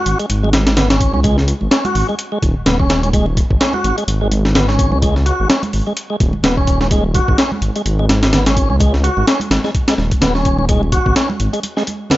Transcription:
Already playing: F#4
0.06 G#1, closed hi-hat
0.19 G#3, closed hi-hat
0.30 G#1, closed hi-hat
0.43 G#3, muted conga
0.53 G#1, snare, closed hi-hat, high conga
0.67 snare, closed hi-hat
0.76 B3, snare, closed hi-hat, muted conga, low conga
0.90 C#4, snare, closed hi-hat
1.01 kick, closed hi-hat
1.14 C#2 C#4, high conga
1.23 G#3, kick, closed hi-hat, muted conga
1.38 snare
1.48 closed hi-hat
1.61 G#1, muted conga
1.71 C#4, snare, closed hi-hat
1.85 F#4, closed hi-hat, high conga
1.95 G#1, open hi-hat
2.09 G#3, muted conga
2.19 closed hi-hat
2.32 G#3
2.42 D#1, kick, closed hi-hat, muted conga, high conga
2.56 D#1
2.66 D#1 B3, snare, closed hi-hat, low conga
2.79 C#4, kick
2.89 snare, closed hi-hat, muted conga
3.03 C#4, closed hi-hat, high conga
3.13 G#3, kick, closed hi-hat
3.26 muted conga
3.37 kick, closed hi-hat
3.51 G#1, kick
3.60 C#4, snare, closed hi-hat
3.73 F#4, muted conga, high conga
3.84 G#1, closed hi-hat
3.97 G#3, closed hi-hat
4.08 G#1, closed hi-hat, muted conga
4.21 G#3
4.31 G#1, closed hi-hat, high conga
4.45 snare
4.54 B3, snare, closed hi-hat, muted conga, low conga
4.68 C#4, snare
4.79 kick, closed hi-hat
4.92 C#2 C#4, muted conga, high conga
5.02 G#3, kick, closed hi-hat, muted conga
5.16 snare
5.26 F#4, closed hi-hat
5.40 G#1
5.49 C#4, snare, closed hi-hat, muted conga
5.63 closed hi-hat, high conga
5.73 G#1, open hi-hat
5.87 G#3, muted conga
5.97 closed hi-hat
6.10 G#3
6.20 D#1, kick, closed hi-hat, high conga
6.33 D#1, muted conga
6.43 D#1 B3, snare, closed hi-hat, low conga
6.57 C#4, kick
6.67 kick, closed hi-hat, muted conga
6.81 C#4, snare, high conga
6.91 G#3, kick, closed hi-hat
7.14 F#4, kick, closed hi-hat, muted conga
7.28 G#1, kick
7.38 C#4, snare, closed hi-hat
7.52 muted conga, high conga
7.61 G#1, closed hi-hat
7.76 G#3, closed hi-hat
7.85 G#1, closed hi-hat
7.99 G#3, muted conga
8.09 G#1, snare, closed hi-hat, high conga
8.23 snare, closed hi-hat
8.33 B3, snare, closed hi-hat, muted conga, low conga
8.46 C#4, snare, closed hi-hat
8.57 kick, closed hi-hat
8.70 C#2 C#4, high conga
8.80 G#3, kick, closed hi-hat, muted conga
8.94 snare
9.04 F#4, closed hi-hat
9.17 G#1, muted conga
9.27 C#4, snare, closed hi-hat
9.40 closed hi-hat, high conga
9.50 G#1, snare, closed hi-hat
9.64 G#3, snare, muted conga
9.75 kick, closed hi-hat
9.88 G#3, snare, closed hi-hat
9.98 D#1, snare, muted conga, high conga
10.11 D#1, kick, closed hi-hat
10.21 D#1 B3, snare, closed hi-hat, low conga
10.35 C#4, snare
10.45 kick, closed hi-hat, muted conga
10.58 C#4, high conga
10.69 G#3, kick, closed hi-hat
10.83 muted conga
10.92 F#4, kick, closed hi-hat
11.06 G#1, kick
11.16 C#4, snare, closed hi-hat
11.30 muted conga, high conga
11.40 G#1, closed hi-hat
11.53 G#3, closed hi-hat
11.63 closed hi-hat, muted conga
11.77 G#3, snare
11.87 closed hi-hat, high conga
12.10 B3, snare, closed hi-hat, muted conga, low conga

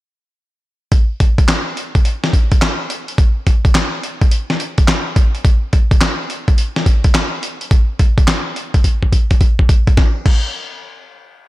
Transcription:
0.92 kick, closed hi-hat
1.20 kick, closed hi-hat
1.38 kick, closed hi-hat
1.48 snare, clap, closed hi-hat
1.77 closed hi-hat
1.95 kick, closed hi-hat
2.05 closed hi-hat
2.24 snare
2.33 kick, closed hi-hat
2.52 kick, closed hi-hat
2.62 snare, clap, closed hi-hat
2.90 closed hi-hat
3.08 closed hi-hat
3.18 kick, closed hi-hat
3.47 kick, closed hi-hat
3.65 kick, closed hi-hat
3.75 snare, clap, closed hi-hat
4.03 closed hi-hat
4.22 kick, closed hi-hat
4.31 closed hi-hat
4.50 snare
4.60 closed hi-hat
4.78 kick, closed hi-hat
4.88 snare, clap, closed hi-hat
5.16 kick, closed hi-hat
5.35 closed hi-hat
5.45 kick, closed hi-hat
5.73 kick, closed hi-hat
5.91 kick, closed hi-hat
6.01 snare, clap, closed hi-hat
6.30 closed hi-hat
6.48 kick, closed hi-hat
6.58 closed hi-hat
6.76 snare
6.86 kick, closed hi-hat
7.04 kick, closed hi-hat
7.14 snare, clap, closed hi-hat
7.43 closed hi-hat
7.61 closed hi-hat
7.71 kick, closed hi-hat
7.99 kick, closed hi-hat
8.18 kick, closed hi-hat
8.28 snare, clap, closed hi-hat
8.56 closed hi-hat
8.74 kick, closed hi-hat
8.84 kick, closed hi-hat
9.03 kick
9.12 kick, closed hi-hat
9.31 kick, closed hi-hat
9.41 kick, closed hi-hat
9.59 kick
9.69 kick, closed hi-hat
9.87 kick, closed hi-hat
9.97 kick, snare
10.26 kick, crash

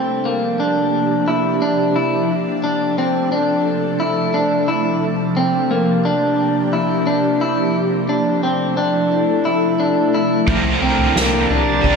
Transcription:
Already playing: C3 F3 A#3 C4 D4 G4
0.25 A#3
0.60 D4
1.28 E4
1.62 D4
1.96 E4
2.30 C3 A3 A4
2.64 D4
2.98 C4
3.32 D4
4.00 E4
4.34 D4
4.68 E4
5.02 A#3 D4 G4
5.37 C4
5.71 A#3
6.05 D4
6.73 E4
7.07 D4
7.41 E4
7.75 A3 E4 A4
8.09 D4
8.43 C4
8.77 D4
9.45 E4
9.80 D4
10.14 E4
10.47 C2 C3 F3 A#3 C4 D4 G4 A#4, kick, floor tom
10.81 C2 C4 D4 A#4 D5
10.85 C4
10.99 floor tom
11.16 C2 A#3, snare
11.50 C2 D4, floor tom
11.81 C2 F3, kick, floor tom
11.85 C4 D4
11.92 A#4

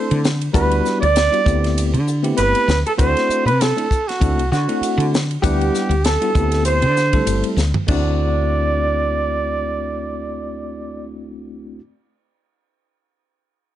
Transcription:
Already playing: A3 C4 D4 E4 A4 C5
0.11 D3, ride
0.24 snare, hi-hat pedal
0.41 ride
0.53 D2 G3 B3 D4 E4 F#4 B4, kick, hi-hat pedal, ride
0.71 ride
0.85 snare, hi-hat pedal
1.01 D2 D5, ride
1.16 snare, hi-hat pedal, ride
1.31 G3 B3 D4 E4 F#4, ride
1.45 D2 A3 B3 C4 E4 G4, kick, hi-hat pedal
1.64 snare, ride
1.78 hi-hat pedal, ride
1.94 D3, ride
2.06 E4 G4, hi-hat pedal
2.23 A3 B3 C4 E4 G4, ride
2.37 G1 B4, hi-hat pedal, ride
2.55 ride
2.68 D2, snare, hi-hat pedal
2.86 A4, ride
2.97 D2 A3 C4 D4 E4 F#4 C5, kick, hi-hat pedal, ride
3.17 snare, ride
3.29 muted fretless electric bass stroke, hi-hat pedal
3.45 C3 B4, ride
3.61 A4, snare, hi-hat pedal, ride
3.76 A3 C4 D4 E4 A4, ride
3.90 E4, kick, hi-hat pedal
4.08 F#4, snare, ride
4.20 D2 A3 C4 D4 E4 A4, kick, hi-hat pedal, ride
4.37 C2, ride
4.52 D3 E4 F#4 A4, snare, hi-hat pedal
4.68 A3 C4 D4 E4 F#4, ride
4.81 muted fretless electric bass stroke, hi-hat pedal, ride
4.98 D3, ride
5.14 snare, hi-hat pedal
5.31 ride
5.42 D2 G3 B3 D4 E4 G4 F#5, kick, hi-hat pedal, ride
5.61 ride
5.75 snare, hi-hat pedal
5.89 D2, ride
6.04 A4, snare, hi-hat pedal, ride
6.21 G3 B3 D4 E4 F#4, ride
6.35 D2 A3 B3 C4 E4 G4, kick, hi-hat pedal
6.52 snare, ride
6.65 C5, hi-hat pedal, ride
6.82 D3, ride
6.96 E4 G4, snare, hi-hat pedal
7.13 G3 A3 C4 E4 A4, kick, ride
7.26 G1, hi-hat pedal, ride
7.44 ride
7.56 D2, snare, hi-hat pedal
7.74 floor tom
7.87 D2 A3 C4 D4 E4 D5, kick, crash
7.91 F#4

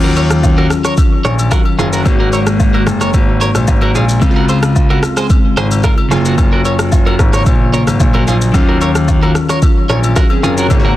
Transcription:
Already playing: D#2 D#3 F#3 C#4 F4
0.04 F#4 A#4
0.16 A#4 C#5, high agogo, shaker
0.31 cross-stick, shaker
0.43 kick, low woodblock, shaker
0.58 F#4 A#4, high agogo
0.70 cross-stick, shaker
0.85 A#4 C#5, cross-stick, shaker
0.98 kick, high agogo, shaker
1.25 A#1 A#4 C#5, cross-stick, shaker
1.39 high agogo, shaker
1.50 D#3 F#3 C#4 F4 F#4 A#4, kick, cross-stick, low woodblock, shaker
1.65 high agogo
1.79 F#1 F4 G#4, shaker
1.93 F#4 A#4, shaker
2.03 G#1 C#3 G#3 A#3, kick, high agogo, shaker
2.08 F#4
2.20 F#4 A#4
2.33 A#4 C#5, high agogo, shaker
2.47 cross-stick, shaker
2.60 kick, low woodblock, shaker
2.74 F#4 A#4, high agogo
2.87 F#1, cross-stick, shaker
3.01 A#4 C#5, cross-stick, shaker
3.14 G#1, kick, high agogo, shaker
3.41 A#4 C#5, shaker
3.55 A#1, cross-stick, high agogo, shaker
3.68 G#1, kick, low woodblock, shaker
3.81 F#4 A#4, high agogo
3.95 A#1 F4 G#4, shaker
4.09 shaker
4.19 C#2 C#3 G#3 C4, kick, high agogo, shaker
4.24 D#4
4.31 F4
4.36 F#4 A#4
4.49 G#4 C5, high agogo, shaker
4.63 cross-stick, shaker
4.76 kick, low woodblock, shaker
4.90 F#4 A#4, high agogo
5.03 cross-stick, shaker
5.17 G#4 C5, cross-stick, shaker
5.30 kick, high agogo, shaker
5.57 G#1 G#4 C5, cross-stick, shaker
5.71 high agogo, shaker
5.84 F4 A#4, kick, cross-stick, low woodblock, shaker
5.98 high agogo
6.09 F#1 C#3 F#3 A#3 F4 G#4, shaker
6.13 F4
6.25 F#4 A#4, shaker
6.38 F#1, kick, high agogo, shaker
6.53 F#4 A#4
6.65 A#4 C#5, high agogo, shaker
6.79 cross-stick, shaker
6.92 kick, low woodblock, shaker
7.06 F#4 A#4, high agogo
7.19 G#1, kick, cross-stick, shaker
7.33 A#4 C#5, cross-stick, shaker
7.46 A#1, kick, high agogo, shaker
7.72 C#3 F#3 A#3 F4 A#4 C#5, shaker
7.87 G#1, cross-stick, high agogo, shaker
8.00 A#1, kick, low woodblock, shaker
8.14 F#4 A#4, high agogo
8.28 A#1 F4 G#4, shaker
8.41 shaker
8.52 D#2 D#3 F#3 C#4, kick, high agogo, shaker
8.57 F4
8.69 F#4 A#4
8.81 A#4 C#5, high agogo, shaker
8.95 cross-stick, shaker
9.08 kick, low woodblock, shaker
9.23 F#4 A#4, high agogo
9.35 cross-stick, shaker
9.49 A#4 C#5, cross-stick, shaker
9.62 kick, high agogo, shaker
9.89 A#1 A#4 C#5, cross-stick, shaker
10.04 high agogo, shaker
10.16 F#4 A#4, kick, cross-stick, low woodblock, shaker
10.30 C4 G#4, high agogo
10.43 F#1 C#4 F4 G#4 A#4, shaker
10.57 F4 F#4 A#4 C#5, shaker
10.68 G#1 C#3 G#3 A#3, kick, high agogo, shaker
10.73 F4
10.79 F#4
10.85 F#4 A#4

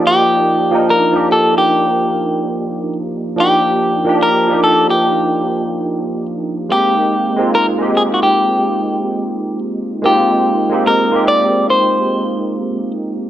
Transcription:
Already playing: F3 A#3 D#4 G4 D5 D#5
0.07 G4
0.71 F3 A#3 D4 D#4
0.75 A#4
0.90 A#4
1.12 F3 A#3 D4 D#4
1.16 G4
1.32 A4
1.58 G4
3.36 F3 A#3 D4 D#4
3.40 G4
4.04 F3 A#3 D4 D#4
4.09 G4
4.23 A#4
4.47 F3 A#3 D4 D#4
4.52 G4
4.64 A4
4.90 G4
6.69 G#3 A#3 C4 D#4 G4
6.74 G4
7.36 G#3 A#3 C4 D#4
7.41 F4
7.55 A#4
7.78 G#3 A#3 C4 D#4
7.82 G4
7.97 G#4
8.14 F#4
8.23 G4
10.02 G#3 A#3 C4 D#4 G4
10.06 F4
10.70 G#3 A#3 C4 D#4
10.74 G4
10.87 A#4
11.11 G#3 A#3 C4 D#4
11.16 G4
11.28 D5
11.70 C5

